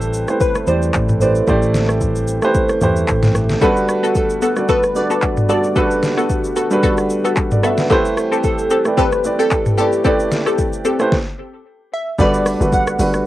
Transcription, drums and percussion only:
0.01 shaker
0.13 shaker
0.28 cross-stick, shaker
0.41 kick, shaker
0.55 cross-stick, shaker
0.67 shaker
0.82 shaker
0.94 kick, clap, shaker
1.09 mid tom, shaker
1.21 shaker
1.35 shaker
1.47 kick, shaker
1.62 shaker
1.74 snare, shaker
1.89 cross-stick, shaker
2.01 kick, shaker
2.16 shaker
2.28 shaker
2.42 cross-stick, shaker
2.55 kick, shaker
2.69 cross-stick, shaker
2.81 mid tom, shaker
2.96 shaker
3.08 kick, clap, shaker
3.23 snare, mid tom, shaker
3.35 cross-stick, shaker
3.49 snare, shaker
3.62 kick, shaker
3.77 shaker
3.89 cross-stick, shaker
4.04 shaker
4.15 kick, shaker
4.30 shaker
4.42 shaker
4.56 cross-stick, shaker
4.69 kick, shaker
4.83 cross-stick, shaker
4.95 shaker
5.11 shaker
5.22 kick, clap, shaker
5.37 mid tom, shaker
5.49 shaker
5.64 shaker
5.76 kick, shaker
5.91 shaker
6.03 snare, shaker
6.18 cross-stick, shaker
6.30 kick, shaker
6.44 shaker
6.56 shaker
6.71 shaker
6.83 kick, shaker
6.98 cross-stick, shaker
7.10 shaker
7.25 shaker
7.36 kick, clap, shaker
7.51 mid tom, shaker
7.63 cross-stick, shaker
7.78 snare, shaker
7.90 kick, shaker
8.05 shaker
8.17 cross-stick, shaker
8.33 shaker
8.44 kick, shaker
8.59 shaker
8.70 shaker
8.85 cross-stick, shaker
8.98 kick, shaker
9.12 cross-stick, shaker
9.24 shaker
9.39 shaker
9.51 kick, clap, shaker
9.66 mid tom, shaker
9.78 shaker
9.92 shaker
10.05 kick, shaker
10.20 shaker
10.32 snare, shaker
10.46 cross-stick, shaker
10.58 kick, shaker
10.73 shaker
10.85 shaker
10.99 cross-stick, shaker
11.12 kick, snare
12.19 kick, shaker
12.34 shaker
12.46 cross-stick, open hi-hat, shaker
12.61 shaker
12.73 kick, shaker
12.87 cross-stick, shaker
12.99 open hi-hat, shaker
13.14 cross-stick, shaker

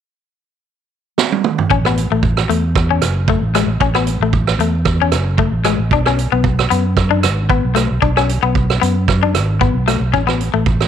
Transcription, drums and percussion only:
1.18 snare
1.32 high tom
1.44 mid tom
1.58 floor tom
1.70 kick
1.85 cross-stick
1.97 closed hi-hat
2.23 kick
2.37 cross-stick
2.50 closed hi-hat
2.75 kick, cross-stick
3.02 cross-stick, closed hi-hat
3.28 kick
3.55 cross-stick, closed hi-hat
3.81 kick
3.95 cross-stick
4.07 closed hi-hat
4.33 kick
4.47 cross-stick
4.60 closed hi-hat
4.85 kick, cross-stick
5.12 cross-stick, closed hi-hat
5.38 kick
5.64 cross-stick, closed hi-hat
5.91 kick
6.06 cross-stick
6.19 closed hi-hat
6.44 kick
6.59 cross-stick
6.71 closed hi-hat
6.97 kick, cross-stick
7.23 cross-stick, closed hi-hat
7.50 kick
7.76 cross-stick, closed hi-hat
8.02 kick
8.17 cross-stick
8.29 closed hi-hat
8.55 kick
8.70 cross-stick
8.83 closed hi-hat
9.08 kick, cross-stick
9.35 cross-stick, closed hi-hat
9.61 kick
9.88 cross-stick, closed hi-hat
10.14 kick
10.28 cross-stick
10.41 closed hi-hat
10.66 kick
10.80 cross-stick

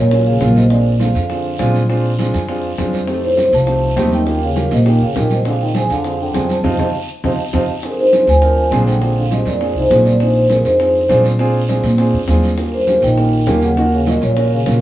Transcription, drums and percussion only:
0.11 high bongo, high conga, long guiro, maracas
0.26 high conga, maracas
0.41 high bongo, low bongo, high conga, short guiro, maracas
0.55 high conga, short guiro, maracas
0.70 high bongo, long guiro, maracas
0.86 maracas
1.00 high bongo, high conga, short guiro, maracas
1.15 short guiro, maracas
1.30 high bongo, high conga, long guiro, maracas
1.45 high conga, maracas
1.59 high bongo, low bongo, high conga, short guiro, maracas
1.75 high conga, short guiro, maracas
1.89 high bongo, high conga, long guiro, maracas
2.04 high bongo, high conga, maracas
2.19 high bongo, high conga, short guiro, maracas
2.34 high conga, short guiro, maracas
2.49 high bongo, high conga, long guiro, maracas
2.63 maracas
2.78 high bongo, low bongo, high conga, short guiro, maracas
2.93 high bongo, high conga, short guiro, maracas
3.07 high bongo, high conga, long guiro, maracas
3.23 high conga, maracas
3.37 high bongo, high conga, short guiro, maracas
3.53 short guiro, maracas
3.67 high bongo, high conga, long guiro, maracas
3.82 high conga, maracas
3.97 high bongo, low bongo, high conga, short guiro, maracas
4.11 high conga, short guiro, maracas
4.27 high bongo, long guiro, maracas
4.41 high bongo, maracas
4.56 high bongo, high conga, short guiro, maracas
4.71 high bongo, high conga, short guiro, maracas
4.86 high bongo, high conga, long guiro, maracas
5.01 high conga, maracas
5.15 high bongo, low bongo, high conga, short guiro, maracas
5.30 high bongo, high conga, short guiro, maracas
5.45 high bongo, high conga, long guiro, maracas
5.60 high conga, maracas
5.75 high bongo, high conga, short guiro, maracas
5.90 short guiro, maracas
6.04 high bongo, high conga, long guiro, maracas
6.20 high conga, maracas
6.34 high bongo, low bongo, high conga, short guiro, maracas
6.49 high conga, short guiro, maracas
6.64 low bongo, low conga, long guiro, maracas
6.79 low bongo, low conga, long guiro, maracas
7.24 low bongo, low conga, long guiro, maracas
7.53 low bongo, low conga, long guiro, maracas
7.83 high bongo, high conga, long guiro, maracas
7.98 high conga, maracas
8.12 high bongo, high conga, short guiro, maracas
8.27 short guiro, maracas
8.42 high bongo, high conga, long guiro, maracas
8.57 high conga, maracas
8.72 high bongo, low bongo, high conga, short guiro, maracas
8.87 high conga, short guiro, maracas
9.02 high bongo, long guiro, maracas
9.16 high bongo, high conga, maracas
9.31 high bongo, high conga, short guiro, maracas
9.46 high bongo, high conga, short guiro, maracas
9.61 high bongo, long guiro, maracas
9.76 high conga, maracas
9.90 high bongo, low bongo, high conga, short guiro, maracas
10.05 high bongo, high conga, short guiro, maracas
10.20 high bongo, long guiro, maracas
10.35 high conga, maracas
10.50 high bongo, high conga, short guiro, maracas
10.65 short guiro, maracas
10.80 high bongo, high conga, long guiro, maracas
10.95 high conga, maracas
11.10 high bongo, low bongo, high conga, short guiro, maracas
11.24 high conga, short guiro, maracas
11.39 high bongo, long guiro, maracas
11.54 high bongo, maracas
11.69 high bongo, high conga, short guiro, maracas
11.84 high conga, short guiro, maracas
11.98 high bongo, long guiro, maracas
12.14 high conga, maracas
12.28 high bongo, low bongo, high conga, short guiro, maracas
12.43 high bongo, high conga, short guiro, maracas
12.58 high bongo, high conga, long guiro, maracas
12.72 high conga, maracas
12.87 high bongo, high conga, short guiro, maracas
13.02 short guiro, maracas
13.17 high bongo, high conga, long guiro, maracas
13.33 maracas
13.47 high bongo, low bongo, high conga, short guiro, maracas
13.61 high conga, short guiro, maracas
13.77 high bongo, long guiro, maracas
13.92 high bongo, high conga, maracas
14.06 high bongo, high conga, short guiro, maracas
14.21 high bongo, high conga, short guiro, maracas
14.36 high bongo, high conga, long guiro, maracas
14.51 high conga, maracas
14.66 high bongo, low bongo, high conga, short guiro, maracas

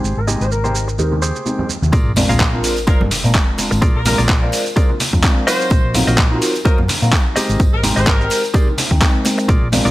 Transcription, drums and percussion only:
0.04 tambourine, shaker
0.17 tambourine
0.28 tambourine, high conga, shaker
0.41 tambourine, shaker
0.51 tambourine, shaker
0.64 tambourine, high conga, shaker
0.75 tambourine, shaker
0.88 tambourine, shaker
0.99 shaker
1.12 tambourine, high conga
1.22 tambourine, shaker
1.35 tambourine, shaker
1.46 tambourine, high conga, shaker
1.58 tambourine, low conga
1.69 tambourine, shaker
1.82 tambourine, high conga, shaker
1.92 kick, tambourine, shaker
2.16 open hi-hat, tambourine, high conga, low conga, shaker
2.30 tambourine, shaker
2.40 kick, clap, tambourine, shaker
2.64 open hi-hat, tambourine, shaker
2.76 tambourine, shaker
2.87 kick, tambourine, shaker
3.00 high conga, low conga
3.11 open hi-hat, tambourine, high conga, shaker
3.24 tambourine, shaker
3.35 kick, clap, tambourine, shaker
3.58 open hi-hat, tambourine, shaker
3.72 tambourine, shaker
3.82 kick, tambourine, shaker
4.05 open hi-hat, tambourine, high conga, low conga, shaker
4.19 tambourine, shaker
4.29 kick, clap, tambourine, shaker
4.52 open hi-hat, tambourine, shaker
4.66 tambourine, shaker
4.76 kick, tambourine, shaker
4.89 high conga
5.00 open hi-hat, tambourine, high conga, shaker
5.13 kick, tambourine, shaker
5.23 kick, clap, tambourine, shaker
5.48 open hi-hat, tambourine, shaker
5.60 tambourine, shaker
5.70 kick, tambourine, shaker
5.94 open hi-hat, tambourine, high conga, low conga, shaker
6.08 tambourine, shaker
6.18 kick, clap, tambourine, shaker
6.42 open hi-hat, tambourine, shaker
6.55 tambourine, shaker
6.65 kick, tambourine, shaker
6.78 high conga, low conga
6.88 open hi-hat, tambourine, high conga, shaker
7.02 tambourine, shaker
7.13 kick, clap, tambourine, shaker
7.36 open hi-hat, tambourine, shaker
7.49 tambourine, shaker
7.60 kick, tambourine, shaker
7.83 open hi-hat, tambourine, high conga, low conga, shaker
7.97 tambourine, shaker
8.06 kick, clap, tambourine, shaker
8.21 shaker
8.30 open hi-hat, tambourine, shaker
8.44 tambourine, shaker
8.54 kick, tambourine, shaker
8.67 high conga
8.78 open hi-hat, tambourine, high conga, shaker
8.91 kick, tambourine, shaker
9.02 kick, clap, tambourine, shaker
9.25 open hi-hat, tambourine, shaker
9.38 tambourine, shaker
9.48 kick, tambourine, shaker
9.72 open hi-hat, tambourine, high conga, low conga, shaker
9.85 tambourine, shaker

